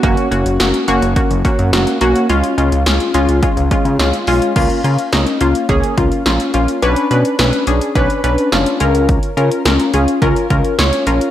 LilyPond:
<<
  \new Staff \with { instrumentName = "Analog polysynth" } { \time 4/4 \key cis \mixolydian \tempo 4 = 106 <ais cis' fis'>8 <ais cis' fis'>8 <ais cis' fis'>8 <ais cis' fis'>8 <ais cis' fis'>8 <ais cis' fis'>8 <ais cis' fis'>8 <ais cis' fis'>8 | <gis cis' eis'>8 <gis cis' eis'>8 <gis cis' eis'>8 <gis cis' eis'>8 <gis cis' eis'>8 <gis cis' eis'>8 <gis cis' eis'>8 <gis cis' eis'>8 | <ais cis' eis'>8 <ais cis' eis'>8 <ais cis' dis'>8 <ais cis' eis'>8 <ais cis' gis'>8 <ais cis' eis'>8 <ais cis' eis'>8 <ais cis' eis'>8 | <cis' d' b'>8 <cis' d' b'>8 <cis' d' b'>8 <cis' d' gis'>8 <cis' d' b'>8 <cis' d' b'>8 <cis' d' eis'>8 <cis' eis' ais'>8~ |
<cis' eis' ais'>8 <cis' eis' ais'>8 <cis' eis' ais'>8 <cis' eis' gis'>8 <cis' eis' ais'>8 <cis' eis' ais'>8 <cis' eis' cis''>8 <cis' eis' ais'>8 | }
  \new Staff \with { instrumentName = "Analog synth bass" } { \clef bass \time 4/4 \key cis \mixolydian fis,,16 r16 fis,,16 fis,,16 fis,,16 r16 fis,,16 fis,,16 r16 fis,,16 r16 fis,16 fis,,16 r16 b,,16 r16 | cis,16 r16 cis,16 cis,16 cis,16 r16 cis,16 cis,16 r16 cis,16 r16 cis16 cis,16 r16 b,,16 r16 | cis,16 r16 cis16 r16 cis,16 r16 cis,16 r16 cis,16 r16 cis,16 r16 ais,,16 r16 ais,,16 r16 | b,,16 r16 b,16 r16 b,,16 r16 b,,16 r16 b,,16 r16 b,,16 r16 fis,,16 r16 cis,8~ |
cis,16 r16 cis16 r16 cis,16 r16 cis,16 r16 cis,16 r16 cis,16 r16 cis,16 r16 ais,,16 r16 | }
  \new DrumStaff \with { instrumentName = "Drums" } \drummode { \time 4/4 <hh bd>16 hh16 hh16 hh16 <hh sn>16 hh16 hh16 hh16 <hh bd>16 hh16 <hh bd>16 hh16 <hh sn>16 hh16 hh16 hh16 | hh16 hh16 hh16 hh16 <hh sn>16 hh16 hh16 hh16 <hh bd>16 hh16 <hh bd>16 hh16 <hh sn>16 hh16 hho16 hh16 | <cymc hh bd>16 hh16 hh16 hh16 <hh sn>16 hh16 hh16 hh16 <hh bd>16 hh16 <hh bd>16 hh16 <hh sn>16 hh16 hh16 hh16 | hh16 hh16 hh16 hh16 <hh sn>16 hh16 hh16 hh16 <hh bd>16 hh16 hh16 hh16 <hh sn>16 hh16 hh16 hh16 |
<hh bd>16 hh16 hh16 hh16 <hh sn>16 hh16 hh16 hh16 <hh bd>16 hh16 <hh bd>16 hh16 <hh sn>16 hh16 hh16 hh16 | }
>>